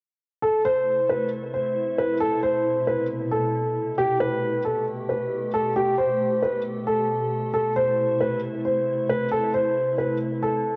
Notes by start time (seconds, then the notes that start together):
0.42 C3 A3 E4 A4
0.65 C5
1.09 B4
1.54 C5
1.98 B4
2.20 B2 A4
2.43 C5
2.87 B4
3.31 A4
3.98 B2 A3 G4
4.20 B4
4.65 A4
5.09 B4
5.54 A4
5.76 G4
5.98 C5
6.43 B4
6.87 A4
7.54 C3 E4 A4
7.76 C5
8.21 B4
8.65 C5
9.09 B4
9.31 A4
9.54 C5
9.98 B4
10.43 A4